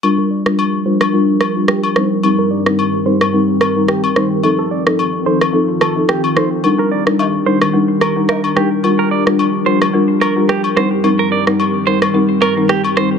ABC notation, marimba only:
X:1
M:4/4
L:1/16
Q:"Swing 16ths" 1/4=109
K:Gm
V:1 name="Marimba"
[G,DFB] z2 [G,DFB] z2 [G,DFB] z [G,DFB] z2 [G,DFB] z2 [G,CEB] z | [G,CEB] z2 [G,CEB] z2 [G,CEB] z [G,CEB] z2 [G,CEB] z2 [G,CEB] z | [F,CEA] z2 [F,CEA] z2 [F,CEA] z [F,CEA] z2 [F,CEA] z2 [F,CEA] z | [G,DEB] z2 [G,DEB] z2 [G,DEB] z [G,DEB] z2 [G,DEB] z2 [G,DEB] z |
[G,DFB] z2 [G,DFB] z2 [G,DFB] z [G,DFB] z2 [G,DFB] z2 [G,CEB] z | [G,CEB] z2 [G,CEB] z2 [G,CEB] z [G,CEB] z2 [G,CEB] z2 [G,CEB] z |]